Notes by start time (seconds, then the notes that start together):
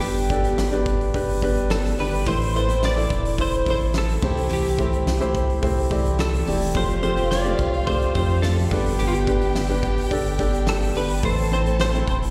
Already playing: G2 D4 G4 B4
0.00 G1 G3 B3 D4 G4, hi-hat pedal, open hi-hat
0.16 hi-hat pedal, open hi-hat
0.30 D4 G4 A4, kick, hi-hat pedal, open hi-hat
0.44 B3 D4 G4, hi-hat pedal, open hi-hat
0.58 G1, snare, hi-hat pedal, open hi-hat
0.71 B3 D4 G4 B4, hi-hat pedal
0.86 kick, hi-hat pedal, open hi-hat
1.01 open hi-hat
1.14 G1 D4 G4 B4, kick, hi-hat pedal, open hi-hat
1.29 hi-hat pedal, open hi-hat
1.41 G3 B3 D4 G4 B4, kick, hi-hat pedal, open hi-hat
1.56 hi-hat pedal, open hi-hat
1.70 G3 B3 D4 G4 A4, snare, hi-hat pedal, open hi-hat
1.85 snare, hi-hat pedal, open hi-hat
1.98 G1 G3 B3 D4 G4 B4 D5, hi-hat pedal, open hi-hat
2.13 hi-hat pedal, open hi-hat
2.25 A1 A2 E3 A3 C4 E4 A4 C5, kick, hi-hat pedal, open hi-hat
2.41 hi-hat pedal, open hi-hat
2.55 E4 A4 B4 C5, hi-hat pedal, open hi-hat
2.68 A3 C4 E4 A4, hi-hat pedal, open hi-hat
2.83 D5, snare, hi-hat pedal, open hi-hat
2.96 A3 C4 E4 A4 D5, hi-hat pedal, open hi-hat
3.10 E1, kick, hi-hat pedal, open hi-hat
3.25 hi-hat pedal, open hi-hat
3.38 E4 A4 C5, kick, hi-hat pedal, open hi-hat
3.53 hi-hat pedal
3.65 A1 A3 C4 E4 A4 C5, kick, hi-hat pedal, open hi-hat
3.70 C5
3.80 open hi-hat
3.93 A3 C4 E4 A4, snare, hi-hat pedal, open hi-hat
3.98 A4
4.09 hi-hat pedal, open hi-hat
4.22 C2 C3 E3 A3 C4 E4 G4 C5, kick, crash
4.37 hi-hat pedal, open hi-hat
4.49 C2 C3 E3 A3 E4 G4, hi-hat pedal, open hi-hat
4.65 hi-hat pedal, open hi-hat
4.78 A3 C4 E4 G4 C5, kick, hi-hat pedal, open hi-hat
4.92 A3 E4 G4, hi-hat pedal, open hi-hat
5.06 C2, snare, hi-hat pedal, open hi-hat
5.20 A3 C4 E4 G4 C5, hi-hat pedal
5.35 kick, hi-hat pedal, open hi-hat
5.50 open hi-hat
5.62 C2 A3 C4 E4 G4 C5, kick, hi-hat pedal, open hi-hat
5.77 hi-hat pedal, open hi-hat
5.89 E3 A3 C4 E4 G4 D5, kick, hi-hat pedal, open hi-hat
6.05 hi-hat pedal, open hi-hat
6.18 E3 A3 E4 G4 A4, snare, hi-hat pedal, open hi-hat
6.33 hi-hat pedal, open hi-hat
6.45 E1 E3 A3 C4 E4 G4 D5, hi-hat pedal, open hi-hat
6.61 hi-hat pedal, open hi-hat
6.74 F1 F2 C3 F3 A3 C4 F4 G4 C5 F5, kick, hi-hat pedal, open hi-hat
6.89 hi-hat pedal
7.03 A3 C4 F4 G4 A4 C5, hi-hat pedal, open hi-hat
7.16 F3 A3 C4 G4, open hi-hat
7.31 D5, snare, hi-hat pedal, open hi-hat
7.44 F3 A3 C4 F4 G4 C5, hi-hat pedal
7.59 C2, kick, hi-hat pedal, open hi-hat
7.74 C5, open hi-hat
7.87 A3 C4 F4 G4 C5 D5, kick, hi-hat pedal, open hi-hat
8.01 hi-hat pedal
8.15 F2 F3 A3 C4 F4 G4 C5, kick, hi-hat pedal, open hi-hat
8.30 open hi-hat
8.42 F3 A3 C4 G4 A4, snare, hi-hat pedal, open hi-hat
8.58 snare, hi-hat pedal, open hi-hat
8.70 G1 G2 G3 B3 D4 G4 B4 G5, kick, hi-hat pedal, open hi-hat
8.85 hi-hat pedal, open hi-hat
8.99 G1 G2 D3 G3 B3 D4 G4, hi-hat pedal, open hi-hat
9.07 F4
9.13 G4, hi-hat pedal
9.27 D4 G4 B4, kick, hi-hat pedal, open hi-hat
9.41 G3 B3 D4 G4, open hi-hat
9.55 G1, snare, hi-hat pedal, open hi-hat
9.69 G3 B3 D4 G4 B4, hi-hat pedal, open hi-hat
9.83 kick, hi-hat pedal, open hi-hat
9.97 hi-hat pedal, open hi-hat
10.11 G1 D4 G4 A4, kick, hi-hat pedal, open hi-hat
10.25 hi-hat pedal, open hi-hat
10.38 G3 B3 D4 G4 A4, kick, hi-hat pedal, open hi-hat
10.53 hi-hat pedal, open hi-hat
10.66 G3 B3 D4 G4 A4, snare, hi-hat pedal, open hi-hat
10.81 hi-hat pedal, open hi-hat
10.94 G1 G3 B3 D4 G4 B4, hi-hat pedal, open hi-hat
11.09 hi-hat pedal, open hi-hat
11.22 A1 A2 E3 A3 C4 E4 A4 C5 A5, kick
11.37 hi-hat pedal, open hi-hat
11.51 C4 E4 C5, hi-hat pedal, open hi-hat
11.65 A3 C4 E4 A4, hi-hat pedal, open hi-hat
11.79 C5, snare, hi-hat pedal, open hi-hat
11.93 A3 C4 E4 A4, hi-hat pedal, open hi-hat
12.08 E1 C5, kick, hi-hat pedal, open hi-hat
12.22 hi-hat pedal, open hi-hat